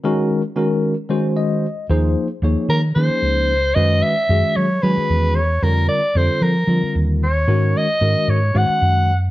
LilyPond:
<<
  \new Staff \with { instrumentName = "Soprano saxophone" } { \time 7/8 \key aes \major \tempo 4 = 113 r2. r8 | r4. bes'8 c''4. | ees''8 fes''4 des''8 ces''4 des''8 | bes'8 d''8 c''8 bes'4 r8 des''8~ |
des''8 ees''4 des''8 ges''4 r8 | }
  \new Staff \with { instrumentName = "Tine electric piano" } { \time 7/8 \key aes \major << { r2 r8 ees''4 | r2. r8 | r2. r8 | r2. r8 |
r2. r8 | } \\ { <ees aes des' ges' bes'>8 r8 <ees aes des' ges' bes'>8 r8 <ees aes des' ges' c''>4 r8 | <f bes ees' aes' c''>8 r8 <f bes ees' aes' des''>8 r8 <f bes des' ees' aes'>4 r8 | <ees aes des' ges' ces''>8 r8 <ees aes des' ges' aes'>8 r8 <ees aes des' ges' aes'>4 r8 | <d g c' f' bes'>8 r8 <d g c' f' a'>8 r8 <d g c' f' bes'>4 r8 |
<ees aes des' ges' bes'>8 r8 <ees aes des' ges' bes'>8 r8 <ees aes des' ges' c''>4 r8 | } >> }
  \new Staff \with { instrumentName = "Fingered electric bass" } { \clef bass \time 7/8 \key aes \major r2. r8 | ees,8 r8 ees,16 r16 ees8 ees16 r16 des,4 | ges,8 r8 ges,16 r16 ges8 ges16 r16 fes,4 | f,8 r8 f,16 r16 f8 f16 r16 ees,4 |
aes,8 r8 aes,16 r16 aes,8 aes,16 r16 ges,4 | }
>>